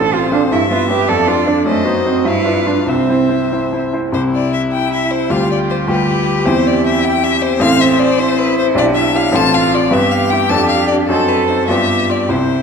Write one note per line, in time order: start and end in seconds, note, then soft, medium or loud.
0.00 0.13 A1 medium
0.00 0.15 A4 medium
0.00 0.54 C5 medium
0.13 0.30 C4 soft
0.13 0.32 F4 medium
0.13 0.31 A4 soft
0.13 0.31 F5 soft
0.32 0.50 C4 soft
0.32 0.41 D4 medium
0.32 0.50 A4 soft
0.32 0.50 F5 soft
0.32 0.47 F5 medium
0.52 0.71 G2 medium
0.52 0.71 E4 medium
0.52 1.10 E5 medium
0.71 0.88 B3 soft
0.71 0.88 F4 medium
0.71 0.88 B4 soft
0.71 0.89 E5 soft
0.89 1.07 B3 soft
0.89 1.10 G4 medium
0.89 1.08 B4 soft
0.89 1.08 E5 soft
0.89 1.05 E5 medium
1.08 1.28 F2 medium
1.08 1.29 A4 medium
1.08 1.67 D5 medium
1.27 1.45 D4 soft
1.27 1.49 F4 medium
1.27 1.46 A4 soft
1.27 1.46 D5 soft
1.47 1.65 D4 soft
1.47 1.66 D4 medium
1.47 1.65 A4 soft
1.47 1.62 D5 medium
1.47 1.65 D5 soft
1.66 1.86 F#2 medium
1.66 1.87 A3 medium
1.66 2.26 C5 medium
1.66 2.29 D#5 medium
1.85 2.05 B3 medium
1.85 2.04 D#4 soft
1.85 2.04 F#4 soft
1.85 2.04 C5 soft
2.05 2.26 C4 medium
2.05 2.25 D#4 soft
2.05 2.25 F#4 soft
2.05 2.25 C5 soft
2.25 2.46 G2 soft
2.25 2.69 E4 medium
2.25 2.87 B4 soft
2.25 2.90 F5 soft
2.45 2.65 D4 soft
2.45 2.65 F4 soft
2.45 2.65 B4 soft
2.66 2.86 D4 soft
2.66 2.87 D4 medium
2.66 2.86 F4 soft
2.66 2.86 B4 soft
2.86 3.08 C2 soft
2.86 3.50 C4 medium
2.86 3.81 C5 soft
2.86 3.93 E5 soft
3.09 3.28 C4 soft
3.09 3.28 E4 soft
3.09 3.28 C5 soft
3.29 3.49 C4 soft
3.29 3.49 E4 soft
3.29 3.49 C5 soft
3.52 3.71 C4 soft
3.52 3.71 E4 soft
3.52 3.71 C5 soft
3.73 3.92 C4 soft
3.73 3.92 E4 soft
3.73 3.92 C5 soft
3.93 4.11 C4 soft
3.93 4.11 E4 soft
3.93 4.12 C5 soft
4.12 5.27 C2 soft
4.12 5.27 C4 soft
4.12 5.27 E4 soft
4.12 5.33 E4 soft
4.12 5.28 G4 soft
4.12 4.22 C5 medium
4.35 4.53 D5 medium
4.54 4.62 E5 medium
4.72 5.33 E4 medium
4.72 4.92 G5 medium
4.93 5.13 E5 medium
5.11 5.32 C5 medium
5.29 5.86 D2 soft
5.29 5.86 G3 soft
5.29 5.87 F4 soft
5.29 5.90 F4 medium
5.29 5.87 G4 soft
5.29 7.64 G4 soft
5.29 5.50 F5 medium
5.51 5.59 D5 medium
5.70 5.78 C5 medium
5.87 6.44 D2 soft
5.87 6.44 G3 soft
5.87 6.44 F4 soft
5.87 6.49 G4 medium
5.87 6.45 G4 soft
5.87 6.48 B4 medium
6.45 7.58 E2 soft
6.45 7.58 C4 soft
6.45 7.58 E4 soft
6.45 7.62 E4 medium
6.45 7.59 G4 soft
6.45 6.68 C5 medium
6.67 6.86 D5 medium
6.86 7.07 E5 medium
7.05 7.25 G5 medium
7.24 7.44 E5 medium
7.42 7.63 C5 medium
7.59 8.72 A1 medium
7.59 8.72 C4 soft
7.59 8.21 C4 medium
7.59 8.73 E4 soft
7.59 8.73 A4 soft
7.59 8.77 C5 medium
7.59 7.83 F5 loud
7.81 8.01 E5 medium
7.99 8.21 D5 medium
8.19 9.37 E4 medium
8.19 8.40 C5 medium
8.38 8.58 B4 medium
8.58 8.66 C5 medium
8.75 9.32 B1 medium
8.75 9.32 D4 soft
8.75 9.32 G4 soft
8.75 9.33 D5 soft
8.75 8.86 D5 medium
8.95 9.18 E5 medium
9.16 9.30 G4 medium
9.16 9.37 F5 medium
9.32 9.90 A1 medium
9.32 9.90 C4 medium
9.32 9.92 F4 medium
9.32 9.90 A4 medium
9.32 9.91 F5 soft
9.32 9.56 A5 loud
9.55 9.76 F5 medium
9.75 9.89 F4 medium
9.75 9.95 D5 medium
9.91 10.49 G2 medium
9.91 10.49 B3 soft
9.91 11.08 G4 medium
9.91 10.49 B4 soft
9.91 10.49 E5 soft
9.91 10.13 E5 medium
10.12 10.32 F5 medium
10.31 10.47 E4 medium
10.31 10.51 G5 medium
10.49 11.07 F2 medium
10.49 11.08 D4 soft
10.49 11.08 A4 soft
10.49 11.08 D5 soft
10.49 10.68 A5 medium
10.69 10.87 F5 medium
10.88 10.96 D5 medium
10.92 11.06 D4 medium
11.07 11.67 F#2 medium
11.07 11.68 C4 soft
11.07 11.67 F#4 soft
11.07 11.30 A4 medium
11.07 11.72 A4 medium
11.07 11.68 D#5 soft
11.28 11.49 B4 medium
11.48 11.65 D#4 medium
11.48 11.67 C5 medium
11.68 12.28 G2 soft
11.68 12.28 B3 soft
11.68 12.28 F4 soft
11.68 12.32 G4 medium
11.68 12.29 D5 soft
11.68 12.12 E5 medium
12.10 12.25 F4 medium
12.10 12.31 D5 medium
12.29 12.62 C2 soft
12.29 12.62 C4 soft
12.29 12.62 E4 soft
12.29 12.62 E4 medium
12.29 12.62 C5 medium
12.29 12.62 C5 soft